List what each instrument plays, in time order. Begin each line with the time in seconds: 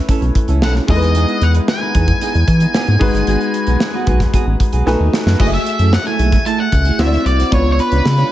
Already playing: grand piano A3 C#4 E4 B4
0.09 clean electric guitar C#4 E4 A4, kick, closed hi-hat
0.21 analog synth bass B1, muted clean electric guitar stroke, closed hi-hat
0.35 muted clean electric guitar stroke, kick, closed hi-hat
0.48 analog synth bass C#2, clean electric guitar C#4 E4 A4, closed hi-hat
0.61 analog synth bass B1, clean electric guitar C#4 E4 A4, lead electric guitar F#5, snare
0.75 muted clean electric guitar stroke, snare
0.87 analog synth bass E2, grand piano G#3 D#4 E4 A4, lead electric guitar D#5, kick, open hi-hat
0.96 grand piano B4
1.01 clean electric guitar B3 D#4 G#4, snare, closed hi-hat
1.15 clean electric guitar B3 D#4 G#4, closed hi-hat
1.28 muted clean electric guitar stroke, closed hi-hat
1.41 analog synth bass E2, lead electric guitar F#5, muted clean electric guitar stroke, closed hi-hat
1.54 clean electric guitar B3 D#4 B4, closed hi-hat
1.68 lead electric guitar G#5, snare
1.81 clean electric guitar B3 D#4 B4
1.95 analog synth bass E2, clean electric guitar B3 D#4 G#4, kick, closed hi-hat
2.08 muted clean electric guitar stroke, kick, closed hi-hat
2.21 clean electric guitar B3 D#4 G#4, closed hi-hat
2.35 analog synth bass E2, muted clean electric guitar stroke, closed hi-hat
2.48 analog synth bass E3, muted clean electric guitar stroke, kick, closed hi-hat
2.60 clean electric guitar B3 D#4 G#4, closed hi-hat
2.74 clean electric guitar B3 D#4 G#4, snare
2.87 analog synth bass G#2, muted clean electric guitar stroke, closed hi-hat
2.99 analog synth bass G#1, grand piano G#3 D#4 F#4 B4, kick, open hi-hat
3.14 analog synth bass G1, clean electric guitar B3 F#4 G#4, snare, closed hi-hat
3.27 analog synth bass G#1, clean electric guitar B3 F#4 G#4, closed hi-hat
3.41 muted clean electric guitar stroke, closed hi-hat
3.54 muted clean electric guitar stroke, closed hi-hat
3.67 analog synth bass B1, clean electric guitar B3 F#4 B4, closed hi-hat
3.80 muted clean electric guitar stroke, snare
3.94 clean electric guitar B3 F#4 B4
4.07 analog synth bass B1, clean electric guitar B3 F#4 G#4, kick, closed hi-hat
4.20 muted clean electric guitar stroke, kick, snare, closed hi-hat
4.33 clean electric guitar B3 F#4 G#4, kick, closed hi-hat
4.47 analog synth bass A1, muted clean electric guitar stroke
4.60 muted clean electric guitar stroke, kick, closed hi-hat
4.73 analog synth bass B1, clean electric guitar B3 F#4 G#4, closed hi-hat
4.86 analog synth bass B1, grand piano A3 D#4 F#4 B4 G#5, clean electric guitar B3 D#4 A4, snare
5.00 analog synth bass D#2, muted clean electric guitar stroke
5.13 muted clean electric guitar stroke, snare
5.26 analog synth bass F#2, clean electric guitar B3 D#4 A4, snare
5.39 analog synth bass F#1, grand piano A3 F#4 G#4 D#5, clean electric guitar A3 E4 G#4, lead electric guitar D#5, kick, crash
5.47 grand piano E5
5.53 lead electric guitar E5, muted clean electric guitar stroke
5.66 muted clean electric guitar stroke, closed hi-hat
5.79 analog synth bass F#2, clean electric guitar A3 E4 A4, closed hi-hat
5.93 lead electric guitar F#5, snare
6.06 clean electric guitar A3 E4 A4, lead electric guitar G#5, closed hi-hat
6.19 analog synth bass B1, clean electric guitar A3 E4 G#4, closed hi-hat
6.32 muted clean electric guitar stroke, kick, snare, closed hi-hat
6.46 clean electric guitar A3 E4 G#4, lead electric guitar A5, closed hi-hat
6.59 lead electric guitar F#5, muted clean electric guitar stroke
6.72 analog synth bass C#2, muted clean electric guitar stroke, kick, closed hi-hat
6.85 clean electric guitar A3 E4 G#4, closed hi-hat
6.99 analog synth bass D2, grand piano C4 E4 F#4 C5, clean electric guitar E4 F#4 C5, lead electric guitar E5, snare
7.06 grand piano D5
7.12 muted clean electric guitar stroke, snare
7.25 analog synth bass C2, lead electric guitar D5, muted clean electric guitar stroke, closed hi-hat
7.39 clean electric guitar E4 F#4 C5, snare, closed hi-hat
7.51 analog synth bass C#2, grand piano B3 D4 F4 C#5, clean electric guitar D4 F4 B4, lead electric guitar C#5, kick, closed hi-hat
7.65 muted clean electric guitar stroke
7.72 lead electric guitar C#5
7.79 lead electric guitar B4, muted clean electric guitar stroke, closed hi-hat
7.92 analog synth bass C#2, clean electric guitar D4 F4 C#5, closed hi-hat
8.05 analog synth bass C#3, muted clean electric guitar stroke, snare
8.18 clean electric guitar D4 F4 C#5, closed hi-hat